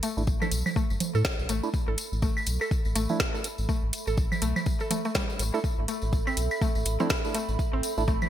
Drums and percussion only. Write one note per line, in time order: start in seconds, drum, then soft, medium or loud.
0.03 closed hi-hat medium
0.03 tambourine medium
0.18 tambourine soft
0.27 kick loud
0.27 tambourine medium
0.42 tambourine soft
0.42 low conga medium
0.42 claves medium
0.51 closed hi-hat medium
0.51 tambourine loud
0.66 tambourine soft
0.66 low conga medium
0.66 claves medium
0.76 kick loud
0.76 tambourine medium
0.90 tambourine soft
1.00 closed hi-hat medium
1.00 tambourine medium
1.00 low conga medium
1.15 tambourine soft
1.25 kick loud
1.25 snare loud
1.25 closed hi-hat soft
1.25 tambourine medium
1.39 tambourine soft
1.49 closed hi-hat medium
1.49 tambourine loud
1.63 tambourine soft
1.74 kick loud
1.74 tambourine medium
1.98 closed hi-hat medium
1.98 tambourine medium
2.13 tambourine soft
2.22 kick loud
2.22 tambourine medium
2.37 tambourine soft
2.37 claves medium
2.46 closed hi-hat medium
2.46 tambourine loud
2.61 tambourine soft
2.61 claves medium
2.71 kick loud
2.71 tambourine medium
2.85 tambourine soft
2.96 closed hi-hat medium
2.96 tambourine medium
3.09 tambourine soft
3.09 low conga medium
3.20 kick loud
3.20 snare loud
3.20 closed hi-hat soft
3.20 tambourine medium
3.35 tambourine soft
3.44 closed hi-hat loud
3.44 tambourine medium
3.58 tambourine soft
3.69 kick loud
3.69 tambourine medium
3.93 closed hi-hat medium
3.93 tambourine medium
4.07 tambourine soft
4.17 kick loud
4.17 tambourine medium
4.32 tambourine soft
4.32 low conga medium
4.32 claves medium
4.42 closed hi-hat medium
4.42 tambourine loud
4.56 tambourine soft
4.56 low conga medium
4.56 claves medium
4.66 kick loud
4.66 tambourine medium
4.80 tambourine soft
4.91 closed hi-hat medium
4.91 tambourine medium
4.91 low conga medium
5.05 tambourine soft
5.15 kick loud
5.15 snare loud
5.15 closed hi-hat soft
5.15 tambourine medium
5.30 tambourine soft
5.39 closed hi-hat medium
5.39 tambourine loud
5.54 tambourine soft
5.64 kick loud
5.64 tambourine medium
5.88 closed hi-hat medium
5.88 tambourine medium
6.02 tambourine soft
6.13 kick loud
6.13 tambourine soft
6.27 tambourine soft
6.27 claves medium
6.37 closed hi-hat medium
6.37 tambourine loud
6.51 tambourine soft
6.51 claves medium
6.61 kick loud
6.61 tambourine medium
6.75 tambourine soft
6.85 closed hi-hat medium
6.85 tambourine medium
7.00 tambourine soft
7.00 low conga medium
7.10 kick loud
7.10 snare loud
7.10 closed hi-hat soft
7.10 tambourine soft
7.25 tambourine soft
7.34 closed hi-hat medium
7.34 tambourine medium
7.49 tambourine soft
7.59 kick loud
7.59 tambourine soft
7.83 closed hi-hat medium
7.83 tambourine medium
7.98 tambourine soft
8.08 kick loud
8.08 tambourine soft
8.22 tambourine soft
8.22 low conga medium
8.22 claves medium